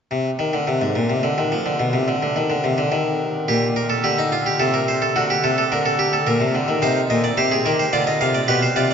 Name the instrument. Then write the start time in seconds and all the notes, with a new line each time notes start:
harpsichord
0.11 C3
0.39 D#3
0.53 D3
0.67 C3
0.81 G#2
0.95 A#2
1.10 C3
1.23 D3
1.38 D#3
1.52 F3
1.66 D3
1.80 B2
1.93 C3
2.08 D3
2.23 D3
2.36 D#3
2.50 D3
2.64 C3
2.78 D3
2.92 D#3
3.48 A#2 G4
3.76 A#4
3.90 A4
4.04 D3 G4
4.18 D#4
4.32 F4
4.46 G4
4.60 C3 A4
4.74 A#4
4.88 C5
5.02 A4
5.16 D3 F#4
5.30 G4
5.44 C3 A4
5.58 A4
5.72 D3 A#4
5.86 A4
5.99 G4
6.13 A4
6.27 A#2 A#4
6.40 C3
6.55 D3
6.68 D#3
6.82 C3 D#4 C5
7.10 A#2 D#5
7.24 D5
7.37 C3 G4 C5
7.52 G#4
7.66 D#3 A#4
7.79 C5
7.93 D3 F4 D5
8.07 D#5
8.21 C3 F5
8.35 D5
8.48 B2 G4 B4
8.63 C5
8.76 C3 F4 D5